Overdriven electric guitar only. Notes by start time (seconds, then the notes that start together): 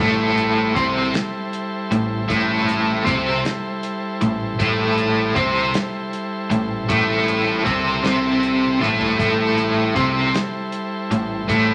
0.00 A2 A3
0.75 C3 C4
1.91 A2
2.28 A2 A3
3.05 C3 C4
4.21 A2
4.59 A2 A3
5.35 C3 C4
6.50 A2
6.89 A2 A3
7.65 C3 C4
8.04 C3 C4
8.81 A2 A3
9.18 A2 A3
9.95 C3 C4
11.11 A2
11.48 A2 A3